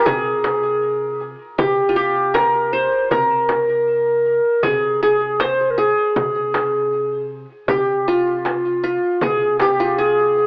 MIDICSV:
0, 0, Header, 1, 6, 480
1, 0, Start_track
1, 0, Tempo, 763359
1, 40, Time_signature, 4, 2, 24, 8
1, 6582, End_track
2, 0, Start_track
2, 0, Title_t, "Clarinet"
2, 0, Program_c, 0, 71
2, 39, Note_on_c, 0, 68, 69
2, 830, Note_off_c, 0, 68, 0
2, 999, Note_on_c, 0, 67, 71
2, 1477, Note_on_c, 0, 70, 83
2, 1487, Note_off_c, 0, 67, 0
2, 1716, Note_on_c, 0, 72, 72
2, 1725, Note_off_c, 0, 70, 0
2, 1951, Note_off_c, 0, 72, 0
2, 1955, Note_on_c, 0, 70, 70
2, 2915, Note_on_c, 0, 68, 79
2, 2924, Note_off_c, 0, 70, 0
2, 3156, Note_off_c, 0, 68, 0
2, 3161, Note_on_c, 0, 68, 67
2, 3403, Note_on_c, 0, 72, 74
2, 3412, Note_off_c, 0, 68, 0
2, 3588, Note_on_c, 0, 70, 54
2, 3597, Note_off_c, 0, 72, 0
2, 3639, Note_on_c, 0, 68, 77
2, 3648, Note_off_c, 0, 70, 0
2, 4598, Note_off_c, 0, 68, 0
2, 4834, Note_on_c, 0, 67, 77
2, 5039, Note_off_c, 0, 67, 0
2, 5039, Note_on_c, 0, 67, 49
2, 5077, Note_on_c, 0, 65, 71
2, 5087, Note_off_c, 0, 67, 0
2, 5557, Note_off_c, 0, 65, 0
2, 5565, Note_on_c, 0, 65, 66
2, 5795, Note_on_c, 0, 68, 73
2, 5805, Note_off_c, 0, 65, 0
2, 6029, Note_off_c, 0, 68, 0
2, 6033, Note_on_c, 0, 67, 64
2, 6276, Note_on_c, 0, 68, 75
2, 6285, Note_off_c, 0, 67, 0
2, 6582, Note_off_c, 0, 68, 0
2, 6582, End_track
3, 0, Start_track
3, 0, Title_t, "Qanun"
3, 0, Program_c, 1, 107
3, 0, Note_on_c, 1, 65, 64
3, 0, Note_on_c, 1, 67, 53
3, 0, Note_on_c, 1, 70, 81
3, 36, Note_on_c, 1, 68, 82
3, 74, Note_off_c, 1, 67, 0
3, 507, Note_off_c, 1, 70, 0
3, 530, Note_off_c, 1, 65, 0
3, 996, Note_on_c, 1, 67, 70
3, 1034, Note_off_c, 1, 68, 0
3, 1188, Note_on_c, 1, 65, 60
3, 1231, Note_off_c, 1, 67, 0
3, 1233, Note_on_c, 1, 67, 90
3, 1472, Note_on_c, 1, 70, 83
3, 1717, Note_on_c, 1, 72, 81
3, 1956, Note_off_c, 1, 70, 0
3, 1958, Note_on_c, 1, 70, 83
3, 2023, Note_off_c, 1, 67, 0
3, 2034, Note_off_c, 1, 65, 0
3, 2380, Note_off_c, 1, 72, 0
3, 2912, Note_on_c, 1, 68, 87
3, 2947, Note_off_c, 1, 70, 0
3, 3158, Note_off_c, 1, 68, 0
3, 3161, Note_on_c, 1, 68, 88
3, 3398, Note_on_c, 1, 72, 89
3, 3631, Note_off_c, 1, 68, 0
3, 3633, Note_on_c, 1, 68, 73
3, 4061, Note_off_c, 1, 72, 0
3, 4570, Note_off_c, 1, 68, 0
3, 4837, Note_on_c, 1, 67, 68
3, 5080, Note_on_c, 1, 65, 76
3, 5554, Note_off_c, 1, 65, 0
3, 5556, Note_on_c, 1, 65, 75
3, 5627, Note_off_c, 1, 67, 0
3, 5802, Note_on_c, 1, 68, 85
3, 6046, Note_on_c, 1, 67, 93
3, 6084, Note_off_c, 1, 68, 0
3, 6159, Note_off_c, 1, 65, 0
3, 6162, Note_on_c, 1, 65, 80
3, 6279, Note_on_c, 1, 68, 90
3, 6316, Note_off_c, 1, 67, 0
3, 6582, Note_off_c, 1, 65, 0
3, 6582, Note_off_c, 1, 68, 0
3, 6582, End_track
4, 0, Start_track
4, 0, Title_t, "Upright bass"
4, 0, Program_c, 2, 32
4, 40, Note_on_c, 2, 48, 90
4, 844, Note_off_c, 2, 48, 0
4, 998, Note_on_c, 2, 48, 83
4, 1803, Note_off_c, 2, 48, 0
4, 1955, Note_on_c, 2, 48, 82
4, 2761, Note_off_c, 2, 48, 0
4, 2914, Note_on_c, 2, 48, 97
4, 3721, Note_off_c, 2, 48, 0
4, 3874, Note_on_c, 2, 48, 96
4, 4681, Note_off_c, 2, 48, 0
4, 4833, Note_on_c, 2, 48, 91
4, 5641, Note_off_c, 2, 48, 0
4, 5794, Note_on_c, 2, 48, 91
4, 6582, Note_off_c, 2, 48, 0
4, 6582, End_track
5, 0, Start_track
5, 0, Title_t, "Darbuka"
5, 41, Note_on_c, 9, 64, 98
5, 104, Note_off_c, 9, 64, 0
5, 162, Note_on_c, 9, 62, 24
5, 225, Note_off_c, 9, 62, 0
5, 278, Note_on_c, 9, 63, 65
5, 341, Note_off_c, 9, 63, 0
5, 761, Note_on_c, 9, 62, 25
5, 824, Note_off_c, 9, 62, 0
5, 998, Note_on_c, 9, 64, 92
5, 1061, Note_off_c, 9, 64, 0
5, 1478, Note_on_c, 9, 63, 64
5, 1541, Note_off_c, 9, 63, 0
5, 1959, Note_on_c, 9, 64, 98
5, 2022, Note_off_c, 9, 64, 0
5, 2075, Note_on_c, 9, 62, 22
5, 2138, Note_off_c, 9, 62, 0
5, 2194, Note_on_c, 9, 63, 61
5, 2257, Note_off_c, 9, 63, 0
5, 2678, Note_on_c, 9, 62, 25
5, 2740, Note_off_c, 9, 62, 0
5, 2913, Note_on_c, 9, 64, 99
5, 2976, Note_off_c, 9, 64, 0
5, 3395, Note_on_c, 9, 63, 67
5, 3458, Note_off_c, 9, 63, 0
5, 3877, Note_on_c, 9, 64, 100
5, 3940, Note_off_c, 9, 64, 0
5, 3998, Note_on_c, 9, 62, 28
5, 4061, Note_off_c, 9, 62, 0
5, 4116, Note_on_c, 9, 63, 73
5, 4179, Note_off_c, 9, 63, 0
5, 4835, Note_on_c, 9, 64, 98
5, 4898, Note_off_c, 9, 64, 0
5, 5319, Note_on_c, 9, 63, 71
5, 5382, Note_off_c, 9, 63, 0
5, 5794, Note_on_c, 9, 64, 109
5, 5857, Note_off_c, 9, 64, 0
5, 5915, Note_on_c, 9, 62, 26
5, 5978, Note_off_c, 9, 62, 0
5, 6036, Note_on_c, 9, 63, 76
5, 6099, Note_off_c, 9, 63, 0
5, 6517, Note_on_c, 9, 62, 26
5, 6580, Note_off_c, 9, 62, 0
5, 6582, End_track
6, 0, Start_track
6, 0, Title_t, "Frame drum"
6, 39, Note_on_c, 9, 64, 85
6, 102, Note_off_c, 9, 64, 0
6, 278, Note_on_c, 9, 64, 68
6, 341, Note_off_c, 9, 64, 0
6, 998, Note_on_c, 9, 64, 90
6, 1061, Note_off_c, 9, 64, 0
6, 1476, Note_on_c, 9, 64, 74
6, 1539, Note_off_c, 9, 64, 0
6, 1956, Note_on_c, 9, 64, 77
6, 2019, Note_off_c, 9, 64, 0
6, 2194, Note_on_c, 9, 64, 69
6, 2257, Note_off_c, 9, 64, 0
6, 2911, Note_on_c, 9, 64, 79
6, 2974, Note_off_c, 9, 64, 0
6, 3395, Note_on_c, 9, 64, 67
6, 3458, Note_off_c, 9, 64, 0
6, 3875, Note_on_c, 9, 64, 81
6, 3938, Note_off_c, 9, 64, 0
6, 4114, Note_on_c, 9, 64, 70
6, 4177, Note_off_c, 9, 64, 0
6, 4830, Note_on_c, 9, 64, 94
6, 4893, Note_off_c, 9, 64, 0
6, 5314, Note_on_c, 9, 64, 63
6, 5377, Note_off_c, 9, 64, 0
6, 5794, Note_on_c, 9, 64, 86
6, 5857, Note_off_c, 9, 64, 0
6, 6034, Note_on_c, 9, 64, 65
6, 6097, Note_off_c, 9, 64, 0
6, 6582, End_track
0, 0, End_of_file